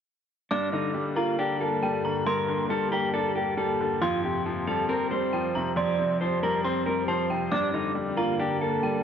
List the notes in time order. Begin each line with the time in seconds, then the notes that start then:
0.51 G2 D3 A#3 D4 G4 D6
0.73 D3 D#4
0.94 G3
1.16 A#3 F4 A#5
1.39 D4 G4
1.60 A#3 A4
1.82 G3 G5
2.05 D3 A#5
2.26 G2 A#4 C6
2.48 D3
2.70 G3 A4
2.92 A#3 G4 A#5
3.14 D4 A4
3.36 A#3 G4
3.57 G3 A4
3.80 D3
4.01 F2 F3 C4 F4 G4 C6
4.23 C3 G4
4.46 F3
4.67 G3 A4 A5
4.89 C4 A#4
5.10 G3 C5
5.33 F3 G5
5.55 C3 A#5
5.76 F2 D5 C6
5.98 C3
6.21 F3 C5
6.42 G3 A#4 A#5
6.64 C4 C5 C6
6.86 G3 A#4
7.08 F3 C5 A5
7.30 C3 G5
7.52 G2 D3 A#3 D4 D6
7.74 D3 D#4
7.95 G3
8.17 A#3 F4 A#5
8.39 D4 G4
8.61 A#3 A4
8.83 G3 G5